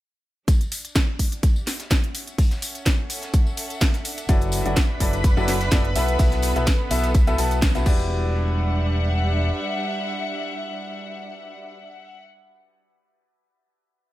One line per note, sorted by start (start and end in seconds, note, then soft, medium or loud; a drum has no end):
0.48 2.15 D4 medium
0.48 kick loud
0.48 closed hi-hat medium
0.48 ride medium
0.48 tambourine medium
0.61 closed hi-hat soft
0.61 tambourine soft
0.72 open hi-hat loud
0.72 ride medium
0.72 tambourine medium
0.85 closed hi-hat medium
0.85 tambourine soft
0.96 kick loud
0.96 snare loud
0.96 closed hi-hat medium
0.96 ride medium
0.96 tambourine medium
1.04 2.15 G4 medium
1.19 kick medium
1.19 open hi-hat loud
1.19 ride medium
1.19 tambourine medium
1.23 7.86 E5 medium
1.23 7.86 F#5 medium
1.32 closed hi-hat medium
1.32 tambourine soft
1.43 kick loud
1.43 closed hi-hat medium
1.43 ride medium
1.43 tambourine soft
1.56 tambourine soft
1.67 snare medium
1.67 open hi-hat loud
1.67 ride medium
1.67 tambourine medium
1.80 snare soft
1.80 closed hi-hat medium
1.80 tambourine soft
1.91 kick loud
1.91 snare loud
1.91 closed hi-hat medium
1.91 ride medium
1.91 tambourine soft
2.04 closed hi-hat soft
2.15 4.05 C#4 medium
2.15 open hi-hat loud
2.15 ride medium
2.15 tambourine medium
2.27 closed hi-hat medium
2.27 tambourine soft
2.38 kick loud
2.38 closed hi-hat medium
2.38 open hi-hat medium
2.38 tambourine soft
2.51 snare soft
2.51 closed hi-hat soft
2.51 tambourine soft
2.62 4.82 A4 medium
2.62 open hi-hat loud
2.62 ride medium
2.62 tambourine loud
2.75 closed hi-hat medium
2.75 tambourine soft
2.86 kick loud
2.86 snare loud
2.86 closed hi-hat medium
2.86 ride medium
2.86 tambourine medium
3.10 open hi-hat loud
3.10 ride medium
3.10 tambourine medium
3.22 snare soft
3.22 closed hi-hat medium
3.22 tambourine soft
3.34 kick loud
3.34 closed hi-hat medium
3.34 ride medium
3.34 tambourine soft
3.47 tambourine soft
3.57 open hi-hat loud
3.57 ride medium
3.57 tambourine medium
3.70 closed hi-hat medium
3.70 tambourine soft
3.81 kick loud
3.81 snare loud
3.81 closed hi-hat medium
3.81 ride medium
3.81 tambourine soft
3.94 snare soft
3.94 closed hi-hat soft
3.94 tambourine soft
4.05 6.82 D4 medium
4.05 open hi-hat loud
4.05 ride medium
4.05 tambourine medium
4.17 closed hi-hat medium
4.17 ride soft
4.17 tambourine soft
4.29 4.63 F#1 loud
4.29 4.63 F#3 medium
4.29 4.62 E4 medium
4.29 4.62 F#4 medium
4.29 4.62 A4 medium
4.29 7.86 B4 medium
4.29 4.62 B4 medium
4.29 4.62 D5 medium
4.29 7.86 B5 medium
4.29 kick loud
4.29 closed hi-hat medium
4.29 ride medium
4.29 tambourine medium
4.41 closed hi-hat soft
4.41 tambourine soft
4.52 open hi-hat loud
4.52 ride medium
4.52 tambourine loud
4.65 4.74 F#1 medium
4.65 4.76 F#3 medium
4.65 4.76 E4 medium
4.65 4.76 F#4 medium
4.65 4.76 A4 medium
4.65 4.76 B4 medium
4.65 4.76 D5 medium
4.65 closed hi-hat soft
4.65 tambourine soft
4.73 6.79 B4 medium
4.73 kick loud
4.73 snare loud
4.73 closed hi-hat medium
4.73 ride medium
4.73 tambourine medium
5.00 5.34 F#1 medium
5.00 5.19 F#3 medium
5.00 5.19 E4 medium
5.00 5.19 F#4 medium
5.00 5.19 A4 medium
5.00 5.19 B4 medium
5.00 5.19 D5 medium
5.00 kick medium
5.00 open hi-hat loud
5.00 ride medium
5.00 tambourine medium
5.13 closed hi-hat soft
5.13 tambourine soft
5.24 kick loud
5.24 closed hi-hat medium
5.24 ride medium
5.24 tambourine medium
5.37 5.70 F#1 medium
5.37 5.55 F#3 loud
5.37 5.55 E4 medium
5.37 5.55 F#4 medium
5.37 5.55 A4 medium
5.37 5.55 B4 medium
5.37 5.55 D5 loud
5.37 tambourine soft
5.48 snare medium
5.48 open hi-hat loud
5.48 ride medium
5.48 tambourine medium
5.60 snare soft
5.60 closed hi-hat medium
5.60 tambourine soft
5.71 5.93 F#1 loud
5.71 5.84 B3 medium
5.71 5.84 E4 medium
5.71 5.84 F#4 medium
5.71 5.84 A4 medium
5.71 5.84 B4 medium
5.71 5.84 D5 loud
5.71 kick loud
5.71 snare loud
5.71 closed hi-hat medium
5.71 ride medium
5.71 tambourine medium
5.85 closed hi-hat soft
5.95 6.17 B1 loud
5.95 7.86 B3 medium
5.95 6.17 B3 medium
5.95 6.17 E4 medium
5.95 6.17 F#4 medium
5.95 6.17 A4 medium
5.95 6.17 B4 medium
5.95 6.17 E5 medium
5.95 open hi-hat loud
5.95 ride medium
5.95 tambourine medium
6.08 closed hi-hat medium
6.08 tambourine soft
6.15 7.86 A4 medium
6.19 6.53 B1 loud
6.19 6.53 B3 medium
6.19 6.53 E4 medium
6.19 6.53 F#4 medium
6.19 6.53 A4 medium
6.19 6.53 B4 medium
6.19 6.53 E5 loud
6.19 kick loud
6.19 closed hi-hat medium
6.19 open hi-hat medium
6.19 tambourine medium
6.31 snare soft
6.31 closed hi-hat soft
6.31 tambourine soft
6.42 open hi-hat loud
6.42 ride medium
6.42 tambourine loud
6.56 6.64 B1 medium
6.56 6.67 B3 medium
6.56 6.67 E4 medium
6.56 6.67 F#4 medium
6.56 6.67 A4 medium
6.56 6.67 B4 medium
6.56 6.67 E5 medium
6.56 closed hi-hat soft
6.56 tambourine soft
6.67 kick loud
6.67 snare loud
6.67 closed hi-hat medium
6.67 ride medium
6.67 tambourine medium
6.91 7.25 B1 loud
6.91 7.09 B3 medium
6.91 7.09 E4 medium
6.91 7.09 F#4 medium
6.91 7.09 A4 medium
6.91 7.09 B4 medium
6.91 7.09 E5 medium
6.91 open hi-hat loud
6.91 ride medium
6.91 tambourine medium
7.04 snare soft
7.04 closed hi-hat soft
7.04 tambourine soft
7.14 kick loud
7.14 closed hi-hat medium
7.14 ride medium
7.14 tambourine medium
7.27 7.36 B1 medium
7.27 7.36 B3 medium
7.27 7.36 E4 medium
7.27 7.36 F#4 medium
7.27 7.36 A4 medium
7.27 7.36 B4 medium
7.27 7.36 E5 loud
7.27 closed hi-hat soft
7.27 tambourine soft
7.38 7.72 B1 loud
7.38 7.57 B3 medium
7.38 7.57 E4 medium
7.38 7.57 F#4 medium
7.38 7.57 A4 medium
7.38 7.57 B4 medium
7.38 7.57 A5 loud
7.38 open hi-hat loud
7.38 ride medium
7.38 tambourine medium
7.51 closed hi-hat soft
7.51 tambourine soft
7.62 kick loud
7.62 snare loud
7.62 closed hi-hat medium
7.62 ride medium
7.62 tambourine medium
7.75 7.85 B1 loud
7.75 7.86 B3 medium
7.75 7.85 E4 medium
7.75 7.85 F#4 medium
7.75 7.86 A4 medium
7.75 7.85 B4 medium
7.75 7.86 E5 medium
7.75 snare medium
7.75 closed hi-hat soft
7.75 tambourine soft
7.86 9.49 E1 medium
7.86 11.73 D4 medium
7.86 11.74 E4 medium
7.86 11.74 F#4 medium
7.86 11.74 G4 medium
7.86 11.74 B4 medium
7.86 11.74 D5 loud
7.86 kick loud
7.86 crash medium
7.86 tambourine medium
7.93 11.81 G3 medium
7.99 tambourine soft
8.25 12.13 E5 medium
8.32 12.19 F#5 medium